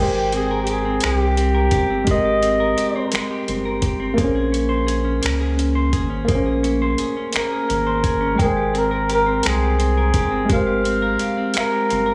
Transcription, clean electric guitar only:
0.00 1.03 G#3 medium
0.15 0.66 G4 medium
0.33 0.85 C4 soft
0.51 1.54 A#4 medium
0.67 1.19 G4 soft
0.85 1.37 C4 medium
1.03 2.07 G#3 medium
1.20 1.72 G4 medium
1.38 1.90 C4 soft
1.55 2.60 A#4 medium
1.73 2.24 G4 medium
1.90 2.42 C4 soft
2.07 3.13 G#3 medium
2.25 2.76 G4 soft
2.42 2.95 C4 medium
2.60 3.65 A#4 medium
2.77 3.29 G4 soft
2.96 3.47 C4 medium
3.13 4.17 G#3 medium
3.31 3.82 G4 soft
3.48 3.99 C4 soft
3.65 4.38 A#4 medium
3.83 4.25 G4 medium
4.00 4.52 C4 medium
4.17 5.22 A#3 medium
4.35 4.86 G#4 medium
4.52 5.04 C#4 soft
4.69 5.75 C5 medium
4.87 5.40 G#4 soft
5.05 5.56 C#4 medium
5.22 6.28 A#3 medium
5.40 5.92 G#4 medium
5.57 6.09 C#4 soft
5.75 6.81 C5 medium
5.93 6.45 G#4 medium
6.10 6.62 C#4 medium
6.28 7.34 A#3 medium
6.46 6.99 G#4 medium
6.63 7.16 C#4 medium
6.82 7.86 C5 medium
6.99 7.51 G#4 medium
7.17 7.68 C#4 medium
7.34 8.37 A#3 medium
7.52 8.03 G#4 soft
7.69 8.19 C#4 medium
7.87 8.91 C5 medium
8.04 8.56 G#4 medium
8.21 8.46 C#4 soft
8.38 9.44 G#3 medium
8.57 9.08 G4 soft
8.74 9.26 C4 soft
8.91 9.97 A#4 medium
9.09 9.62 G4 soft
9.26 9.78 C4 medium
9.45 10.49 G#3 medium
9.63 10.13 G4 medium
9.79 10.30 C4 medium
9.97 11.02 A#4 medium
10.14 10.66 G4 medium
10.31 10.84 C4 medium
10.49 11.54 G#3 medium
10.67 11.19 G4 medium
10.84 11.37 C4 medium
11.02 12.06 A#4 medium
11.20 11.71 G4 medium
11.37 11.89 C4 medium
11.54 12.14 G#3 medium
11.72 12.14 G4 soft
11.89 12.14 C4 medium
12.06 12.14 A#4 medium

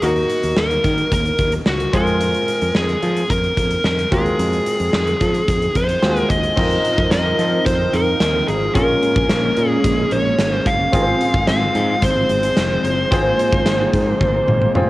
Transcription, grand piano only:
0.02 1.89 A#3 medium
0.02 1.89 D#4 medium
0.02 1.90 F#4 medium
0.02 1.90 A#4 medium
1.93 4.07 G#3 medium
1.93 4.08 C4 medium
1.93 4.08 F4 medium
1.93 4.08 G#4 medium
4.11 4.18 F#3 soft
4.11 5.99 C4 medium
4.11 5.99 F4 medium
4.11 5.99 A#4 medium
4.17 6.00 G#3 medium
6.02 6.57 G#3 medium
6.02 6.54 C4 soft
6.02 6.56 F4 soft
6.02 6.09 F#4 soft
6.09 6.60 G#4 medium
6.56 8.71 C4 medium
6.56 8.71 D#4 medium
6.56 8.71 F4 medium
6.56 8.72 A#4 medium
8.74 10.89 C#4 medium
8.74 10.89 F4 medium
8.74 10.90 G#4 medium
8.74 10.90 A#4 medium
10.92 13.07 C4 medium
10.92 13.07 F4 medium
10.92 13.08 G#4 medium
10.92 11.00 A#4 medium
11.01 13.11 C5 medium
13.11 14.71 C4 medium
13.11 14.72 F4 medium
13.11 14.72 G#4 medium
13.11 14.73 C5 medium
14.75 14.90 C4 medium
14.75 14.90 F4 medium
14.75 14.90 G#4 medium
14.75 14.90 C5 medium

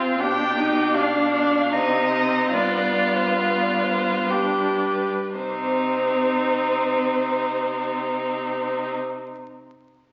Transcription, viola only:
0.00 0.22 C4 medium
0.20 0.59 D4 medium
0.57 0.97 D#4 medium
0.96 1.74 D4 medium
1.75 2.56 C4 medium
2.54 3.37 B3 medium
3.38 4.33 B3 medium
4.32 5.09 D4 soft
5.37 8.96 C4 soft

